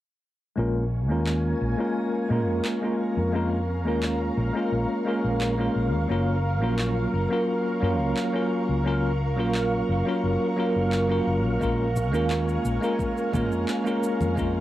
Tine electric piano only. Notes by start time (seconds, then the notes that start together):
0.56 G#3 A#3 C#4 F4 A#4
1.08 G#3 A#3 C#4 F4 A#4
1.77 G#3 A#3 C#4 F4 A#4
2.29 G#3 A#3 C#4 F4 A#4
2.81 G#3 A#3 C#4 F4 A#4
3.32 G#3 A#3 C#4 F4 A#4
3.85 G#3 A#3 C#4 F4 A#4
4.54 G#3 A#3 C#4 F4 A#4
5.05 G#3 A#3 C#4 F4 A#4
5.58 G#3 A#3 C#4 F4 A#4
6.08 F#3 A#3 C#4 F4 A#4
6.60 F#3 A#3 C#4 F4 A#4
7.29 F#3 A#3 C#4 F4 A#4
7.80 F#3 A#3 C#4 F4 A#4
8.33 F#3 A#3 C#4 F4 A#4
8.84 F#3 A#3 C#4 F4 A#4
9.36 F#3 A#3 C#4 F4 A#4
10.05 F#3 A#3 C#4 F4 A#4
10.56 F#3 A#3 C#4 F4 A#4
11.08 F#3 A#3 C#4 F4 A#4
11.60 G#3 A#3 C#4 F4 A#4
12.12 G#3 A#3 C#4 F4 A#4
12.81 G#3 A#3 C#4 F4 A#4
13.32 G#3 A#3 C#4 F4 A#4
13.84 G#3 A#3 C#4 F4 A#4
14.36 G#3 A#3 C#4 F4 A#4